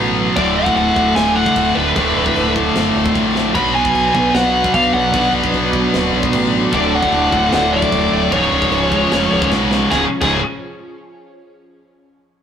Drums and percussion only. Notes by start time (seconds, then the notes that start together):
0.36 kick, crash
0.66 kick
0.77 crash
0.96 kick
1.16 snare, crash
1.46 kick
1.56 kick, crash
1.96 kick, crash
2.26 kick
2.36 crash
2.56 kick
2.76 snare, crash
3.06 kick
3.15 kick, crash
3.36 snare
3.55 kick, crash
3.85 kick
3.95 crash
4.15 kick
4.35 snare, crash
4.64 kick
4.74 kick, crash
5.14 kick, crash
5.44 kick
5.54 crash
5.73 kick
5.94 snare, crash
6.23 kick
6.33 kick, crash
6.73 kick, crash
7.03 kick
7.12 crash
7.32 kick
7.52 snare, crash
7.82 kick
7.92 kick, crash
8.32 kick, crash
8.62 kick
8.72 crash
8.92 kick
9.12 snare, crash
9.42 kick
9.52 kick, snare
9.71 snare
9.91 kick, snare
10.21 kick, crash